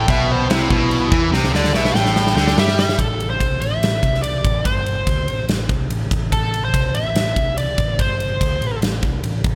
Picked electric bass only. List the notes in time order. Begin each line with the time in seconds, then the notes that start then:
0.08 B1
0.49 C2
0.70 B1
1.12 E2
1.32 C2
1.53 D2
1.74 B1
1.94 A1
2.35 D2
2.56 G2
2.99 A1
3.40 C2
3.61 A1
3.82 A1
4.03 C2
4.45 A1
4.65 G1
5.07 D2
5.28 A1
5.48 A1
5.69 C2
5.90 A1
6.11 A1
6.32 A1
6.74 C2
6.94 A1
7.15 A1
7.36 C2
7.78 A1
7.99 G1
8.41 D2
8.61 A1
8.81 A1
9.02 C2
9.23 A1
9.44 A1